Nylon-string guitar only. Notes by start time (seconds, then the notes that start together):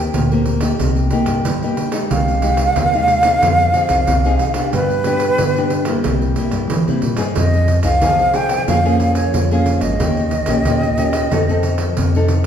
Already playing: D#3 A#3 C4 G4
0.15 A#2
0.32 A#3 C4 G4
0.61 A#3 D#4 G4
0.80 C3
1.12 A#3 D#4 G4
1.46 G2
1.63 A#3 D#4 G4
1.92 G#3 D#4 G4
2.11 C3
2.43 G#3 D#4 G4
2.77 C3
2.94 G#3 D#4 G4
3.24 C4 D#4 G#4
3.42 F3
3.74 C4 D#4 G#4
4.08 C3
4.25 C4 D#4 G#4
4.55 B3 D4 G4
4.74 G3
5.06 B3 D4 G4
5.39 D3
5.58 B3 D4 G4
5.87 G3 A#3 E4
6.05 C3
6.38 G3 A#3 E4
6.71 G2
6.88 G3 A#3 E4
7.17 C4 D#4 G#4
7.37 F3
7.83 C4 D#4 G#4
8.02 C3 C4 D#4 G#4
8.34 C4 D#4 G#4
8.68 F3 A#3 C#4 G#4
8.85 A#3 C#4 G#4
9.34 F3
9.51 A#3 C#4 G#4
10.00 D#3 A#3 C#4 G4
10.47 A#3 C#4 G4
10.66 A#2 A#3 C#4 G4
10.98 A#3 C#4 G4
11.32 F3 C4 D#4 A4
11.49 C4 D#4 A4
11.98 C3
12.16 C4 D#4 A4